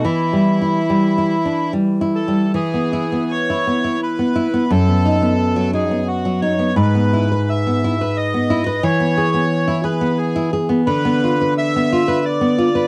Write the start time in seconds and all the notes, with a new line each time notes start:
0.04 E3 E4
0.33 G3
0.62 E4
0.90 G3
1.18 E4
1.45 D4
1.73 G3
2.01 E4
2.15 A4
2.28 G3
2.54 E3 G#4
2.74 B3
2.93 E4
3.12 B3
3.31 C#5
3.50 E4
3.67 B3
3.84 E4
4.03 B4
4.19 B3
4.36 E4
4.54 B3
4.71 F#2 A4
4.88 B3
5.06 D#4
5.22 B3
5.56 F#3
5.73 D#4 G#4
5.91 B3
6.08 F#4
6.25 F#3
6.41 D#4 C#5
6.59 B3
6.76 G#2 B4
6.95 B3
7.13 E4
7.32 B4
7.49 E5
7.67 B3
7.84 E4
8.01 B4
8.17 D#5
8.34 B3
8.50 E4
8.66 B4
8.83 E3 C#5
9.00 B3
9.18 G#4
9.34 B3
9.68 E4
9.84 G#4 B4
10.01 B3
10.18 G#4
10.36 E4
10.53 G#4
10.69 B3
10.86 D3 B4
11.05 B3
11.24 F4
11.41 B4
11.58 E5
11.76 B3
11.92 F4
12.08 B4
12.25 D5
12.41 B3
12.58 F4
12.75 B4